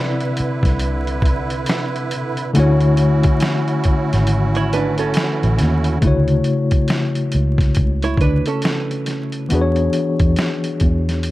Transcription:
Already playing: C3 D3 C4 E4 B4 D5
0.21 closed hi-hat
0.37 muted fingered electric bass stroke, closed hi-hat
0.63 C2, kick, snare, closed hi-hat
0.79 closed hi-hat
1.07 closed hi-hat
1.22 kick, closed hi-hat
1.50 closed hi-hat
1.66 snare, closed hi-hat
1.96 closed hi-hat
2.11 closed hi-hat
2.37 closed hi-hat
2.53 D2 D3 A3 C#4 E4 F#4, closed hi-hat
2.58 F#4 C#5
2.80 closed hi-hat
2.97 closed hi-hat
3.23 kick, closed hi-hat
3.40 snare, closed hi-hat
3.68 closed hi-hat
3.84 muted fingered electric bass stroke, kick, closed hi-hat
4.13 G#1, snare, closed hi-hat
4.27 closed hi-hat
4.55 E4 C#5, closed hi-hat
4.73 D4 B4, closed hi-hat
4.98 C#4 A4, closed hi-hat
5.14 snare, closed hi-hat
5.43 A1, closed hi-hat
5.59 D#2, snare, closed hi-hat
5.84 closed hi-hat
6.01 D2 C#3 A3 E4, kick, closed hi-hat
6.06 F#4 C#5
6.28 closed hi-hat
6.44 closed hi-hat
6.71 kick, closed hi-hat
6.88 snare, closed hi-hat
7.15 closed hi-hat
7.32 C#2, closed hi-hat
7.58 kick, snare, closed hi-hat
7.75 C#2, kick, closed hi-hat
8.02 E4 C#5, closed hi-hat
8.17 D2 B4, kick, closed hi-hat
8.22 D4
8.46 C#4 A4, closed hi-hat
8.62 snare, closed hi-hat
8.91 closed hi-hat
9.06 snare, closed hi-hat
9.32 closed hi-hat
9.49 E2 E3 B3 D4 F#4, closed hi-hat
9.54 G#4 B4
9.61 C#5
9.76 closed hi-hat
9.93 closed hi-hat
10.19 E2, kick, closed hi-hat
10.36 snare, closed hi-hat
10.64 closed hi-hat
10.80 E2, kick, closed hi-hat
11.09 snare, closed hi-hat
11.23 closed hi-hat

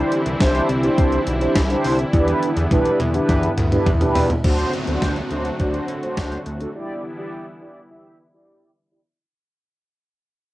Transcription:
Already playing: D3 E3 G3 C4 D4 E4 G4 C5
0.12 closed hi-hat
0.26 C2, closed hi-hat
0.40 C2 D4 E4 G4 C5, kick, snare, closed hi-hat
0.55 closed hi-hat
0.69 C2, closed hi-hat
0.83 D4 E4 G4 C5, closed hi-hat
0.98 C2, kick, closed hi-hat
1.12 closed hi-hat
1.27 B1, closed hi-hat
1.41 D4 E4 G4 C5, closed hi-hat
1.56 C2, kick, snare, closed hi-hat
1.70 D4 E4 G4 C5, closed hi-hat
1.84 C2, open hi-hat
1.99 closed hi-hat
2.13 E2 D3 B3 D4 E4 G4 B4, kick, closed hi-hat, high tom
2.28 closed hi-hat, high tom
2.43 closed hi-hat
2.57 E2, closed hi-hat
2.71 E2 D4 E4 G4 B4, kick, closed hi-hat, mid tom
2.85 closed hi-hat
3.00 E2, closed hi-hat, mid tom
3.14 D4 E4 G4 B4, closed hi-hat
3.29 E2, kick, closed hi-hat, mid tom
3.43 closed hi-hat
3.58 D2, closed hi-hat, mid tom
3.72 D4 E4 G4 B4, closed hi-hat, mid tom
3.86 E2, kick, closed hi-hat, floor tom
4.01 D4 E4 G4 B4, closed hi-hat, floor tom
4.15 E2, floor tom, open hi-hat
4.30 closed hi-hat, floor tom
4.44 D2 D3 F#3 A3 C4 D4 F#4 C5, kick, closed hi-hat, crash, downlifter
4.59 closed hi-hat
4.73 closed hi-hat
4.87 D2 D4 F#4 C5, closed hi-hat
5.02 D2, kick, snare, closed hi-hat
5.16 closed hi-hat
5.31 D2 D4 F#4 C5, closed hi-hat
5.45 closed hi-hat
5.60 D2 D4 F#4 C5, kick, closed hi-hat
5.74 closed hi-hat
5.88 D3, closed hi-hat
6.03 D4 F#4 C5, closed hi-hat
6.17 D2, kick, snare, closed hi-hat
6.32 closed hi-hat
6.46 D2, closed hi-hat
6.61 D4 F#4 A4, closed hi-hat
6.75 E3 G3 B3 E4 G4 D5
7.18 E4 G4 D5
7.61 E4 G4 D5
7.90 E4 G4 E5
8.34 E4 G4 D5
8.91 E4 G4 D5

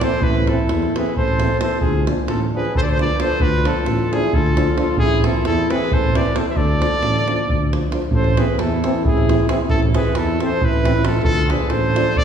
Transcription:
0.01 E3 C4 A4 C5, davul high
0.21 A1 E4 B4, davul low
0.35 davul high
0.47 E3 C4 E4 A4, davul high
0.59 davul high
0.69 E2, davul high
0.82 davul high
0.96 E3 C4 G#4 B4, davul high
1.06 davul high
1.16 A1 A4 C5, davul low
1.28 davul high
1.40 E3 C4, davul high
1.50 davul high
1.59 E3 C4 A4 C5, davul high
1.71 davul high
1.80 D2 F4 G#4, davul low
2.07 F3 D4, davul high
2.18 davul high
2.28 A1 F4 A4, davul high
2.54 F3 D4 G#4 B4
2.65 davul high
2.75 D2 A4 C5, davul low
2.82 A4 B4 D5
2.88 C5, davul high
2.99 F3 D4 B4 D5, davul high
3.10 davul high
3.19 F3 D4 A4 C5, davul high
3.39 D2 F4 B4, davul low
3.64 F3 D4 F4 A4, davul high
3.76 davul high
3.85 A1, davul high
3.99 davul high
4.11 F3 D4 E4 G#4, davul high
4.24 davul high
4.33 D2 F4 A4, davul low
4.46 davul high
4.56 F3 D4, davul high
4.67 davul high
4.76 F3 D4 F4, davul high
4.80 A4
4.97 A1 E4 G#4, davul low
5.22 E3 C4 A4, davul high
5.26 F4
5.35 davul high
5.45 E2 E4 A4, davul high
5.58 davul high
5.70 E3 C4 G#4 B4, davul high
5.81 davul high
5.91 A1 A4 C5, davul low
6.04 davul high
6.15 E3 C4 B4 D5, davul high
6.26 davul high
6.34 E3 C4 A4 C5, davul high
6.48 C5 E5
6.55 D2 A4 D5, davul low
6.69 davul high
6.79 F3 D4, davul high
6.92 davul high
7.02 A1, davul high
7.16 davul high
7.28 F3 D4, davul high
7.39 davul high
7.48 D2, davul low
7.71 F3 D4, davul high
7.82 davul high
7.92 F3 D4, davul high
8.02 davul high
8.11 A1 A4 C5, davul low
8.24 davul high
8.37 E3 C4 G#4 B4, davul high
8.49 davul high
8.58 E2 E4 A4, davul high
8.84 E3 C4, davul high
9.05 A1 E4 G#4, davul low
9.17 davul high
9.28 E3 C4, davul high
9.39 davul high
9.48 E3 C4 E4 G#4, davul high
9.60 davul high
9.68 A1 E4 A4, davul low
9.82 davul high
9.94 E3 C4 G#4 B4, davul high
10.05 davul high
10.15 E2 E4 A4, davul high
10.39 E3 C4 A4, davul high
10.43 C5
10.60 A1 E4, davul low
10.65 B4
10.73 davul high
10.83 E3 C4, davul high
10.95 davul high
11.02 E3 C4 F4, davul high
11.06 A4
11.14 davul high
11.23 D2 F4 A4, davul low
11.38 davul high
11.49 F3 D4 G#4 B4, davul high
11.60 davul high
11.68 A1 A4 C5, davul high
11.95 F3 D4, davul high
12.15 D2 A4 D5, davul low

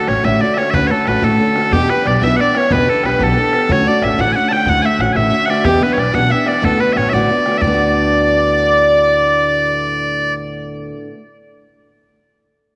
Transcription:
0.07 A1 D3 A3 C#4 F#4 C#5, bodhran
0.16 bodhran
0.23 A1 D2 A2 D3 A3 C#4 F#4 E5, bodhran
0.40 D3 A3 C#4 F#4 D5, bodhran
0.54 D3 A3 C#5 E5, bodhran
0.59 C#4 F#4
0.70 D2 A2 D3 B4 E5, bodhran
0.75 A3 C#4 F#4
0.87 D3 A3 C#4 F#4 A4 C#5, bodhran
1.06 A1 D3 A3 C#4 F#4 B4, bodhran
1.15 bodhran
1.22 A1 D2 A2 D3 A3 C#4 F#4 A4, bodhran
1.39 D3 A3 C#4 F#4, bodhran
1.55 D3 A3 C#4 F#4, bodhran
1.71 E2 B2 E3 B3 D4 G4, bodhran
1.89 E3 B3 D4 G4 B4, bodhran
2.04 B1 E3 B3 D4 G4 D5, bodhran
2.13 bodhran
2.17 D5
2.21 B1 E2 B2 E3 B3 D4 G4 E5, bodhran
2.37 E3 B3 D4 G4 D5 F#5, bodhran
2.41 D5
2.54 E3 B3 D4 G4 C#5, bodhran
2.70 E2 B2 E3 B3 D4 G4 B4, bodhran
2.87 E3 B3 D4 G4 A4, bodhran
3.03 B1 E3 B3 D4 G4 B4, bodhran
3.12 bodhran
3.19 B1 E2 B2 E3 B3 D4 G4 A4, bodhran
3.23 A4
3.36 E3 B3 D4 G4, bodhran
3.52 E3 B3 D4 G4, bodhran
3.69 D2 A2 D3 A3 C#4 F#4 C#5, bodhran
3.85 D3 A3 C#4 F#4 D5, bodhran
4.02 A1 D3 A3 C#4 F#4 E5, bodhran
4.11 bodhran
4.18 A1 D2 A2 D3 A3 C#4 F#4 F#5, bodhran
4.33 D3 A3 F#5 G#5, bodhran
4.37 C#4 F#4
4.49 D3 A3 C#4 G5 A5, bodhran
4.53 F#4 G5
4.66 D2 A2 D3 A3 C#4 F#4 F#5, bodhran
4.82 D3 A3 C#4 F#4 E5 G#5, bodhran
4.99 A1 D3 A3 C#4 F#4 F#5, bodhran
5.08 bodhran
5.13 A1 D2 A2 D3 A3 C#4 E5 G#5, bodhran
5.17 F#4
5.30 D3 A3 C#4 F#4, bodhran
5.46 D3 A3 F#5, bodhran
5.50 C#4 F#4 D5
5.64 E2 B2 E3 B3 D4 G4, bodhran
5.80 E3 B3 D4 G4 B4, bodhran
5.93 B1 E3 C#5
5.98 B3 D4 G4 D5, bodhran
6.06 bodhran
6.13 B1 E2 B2 E3 B3 D4 G4 F#5, bodhran
6.29 E3 B3 D4 G4 E5, bodhran
6.45 E3 B3 D4 G4 D5, bodhran
6.62 D2 A2 D3 A3 B3 F#4 A4, bodhran
6.78 D3 A3 B3 F#4 B4, bodhran
6.93 A1 D3 B3 C#5 E5, bodhran
6.97 A3 F#4 C#5
7.05 bodhran
7.09 A1 D2 A2 D3 D5 E5, bodhran
7.14 A3 B3 F#4 D5
7.29 D3 A3 B3 F#4, bodhran
7.45 D3 A3 B3 F#4, bodhran
7.56 D2 E5
7.61 D2 A2 D3 D5, bodhran
7.67 A3 B3
7.74 F#4

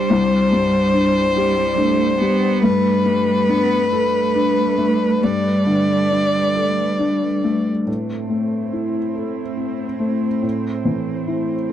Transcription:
Already playing: G3 D4 G4 C5 D5
0.10 C2
0.52 G2
0.93 D4
1.35 G3 G4
1.77 A3 D4
2.20 G3 B3
2.63 G2 A3 D4 B4
3.06 G3 A3
3.49 B3 D4
3.91 A3 A4
4.35 D4
4.78 A3
5.23 G2 G3 D5
5.67 D3
6.11 D4
6.55 A4
6.99 D4
7.44 A3
7.86 A2 A3 C4 E4 C5
8.30 A3
8.73 E4
9.15 A4
9.57 C4
10.00 A3
10.43 A2
10.85 E3
11.27 E4
11.69 A4

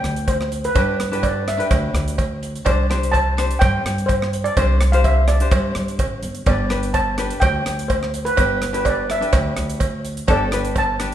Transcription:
Already playing: D4 G4 B4 G5
0.03 D2, cross-stick, closed hi-hat
0.16 closed hi-hat
0.28 C5, kick, closed hi-hat, cowbell
0.41 cross-stick
0.52 closed hi-hat
0.64 B4, closed hi-hat
0.75 G2 D4 G4 B4, kick, closed hi-hat, cowbell
1.00 cross-stick, closed hi-hat
1.11 D4 G4 B4, closed hi-hat
1.23 D5, kick, closed hi-hat, cowbell
1.48 E5, cross-stick, closed hi-hat
1.57 D4 G4 B4, closed hi-hat
1.71 D2, kick, cross-stick, closed hi-hat, cowbell
1.93 D2, cross-stick, closed hi-hat
2.08 closed hi-hat
2.18 kick, closed hi-hat, cowbell
2.43 closed hi-hat
2.56 closed hi-hat
2.65 C2 D4 G4 C5 D5, kick, closed hi-hat, cowbell
2.89 D4 G4 C5, cross-stick, closed hi-hat
3.03 closed hi-hat
3.12 A5, kick, closed hi-hat, cowbell
3.37 D4 G4 C5, cross-stick, closed hi-hat
3.51 closed hi-hat
3.59 G2 G5, kick, cross-stick, closed hi-hat, cowbell
3.84 G2, cross-stick, closed hi-hat
3.98 closed hi-hat
4.06 C5, kick, closed hi-hat, cowbell
4.22 cross-stick
4.33 closed hi-hat
4.44 D5, closed hi-hat
4.57 C2 D4 G4 C5, kick, closed hi-hat, cowbell
4.81 cross-stick, closed hi-hat
4.92 D4 G4 C5 F5, closed hi-hat
5.04 E5, kick, closed hi-hat, cowbell
5.28 D5, cross-stick, closed hi-hat
5.40 D4 G4 C5, closed hi-hat
5.51 G2, kick, cross-stick, closed hi-hat, cowbell
5.75 G2, cross-stick, closed hi-hat
5.88 closed hi-hat
5.99 A1, kick, closed hi-hat, cowbell
6.22 G1, closed hi-hat
6.35 closed hi-hat
6.46 G1 D4 G4 B4 D5, kick, closed hi-hat, cowbell
6.69 D4 G4 B4, cross-stick, closed hi-hat
6.83 closed hi-hat
6.94 A5, kick, closed hi-hat, cowbell
7.17 D4 G4 B4, cross-stick, closed hi-hat
7.30 closed hi-hat
7.40 D2 G5, kick, cross-stick, closed hi-hat, cowbell
7.66 D2, cross-stick, closed hi-hat
7.79 closed hi-hat
7.88 C5, kick, closed hi-hat, cowbell
8.03 cross-stick
8.14 closed hi-hat
8.25 B4, closed hi-hat
8.36 G1 D4 G4 B4, kick, closed hi-hat, cowbell
8.62 cross-stick, closed hi-hat
8.73 D4 G4 B4, closed hi-hat
8.85 D5, kick, closed hi-hat, cowbell
9.10 E5, cross-stick, closed hi-hat
9.21 D4 G4 B4, closed hi-hat
9.33 D2, kick, cross-stick, closed hi-hat, cowbell
9.57 D2, cross-stick, closed hi-hat
9.70 closed hi-hat
9.80 kick, closed hi-hat, cowbell
10.05 closed hi-hat
10.17 closed hi-hat
10.27 G1 D4 G4 A4 D5, kick, closed hi-hat, cowbell
10.51 D4 G4 B4, cross-stick, closed hi-hat
10.65 closed hi-hat
10.76 A5, kick, closed hi-hat, cowbell
10.99 D4 G4 B4, cross-stick, closed hi-hat

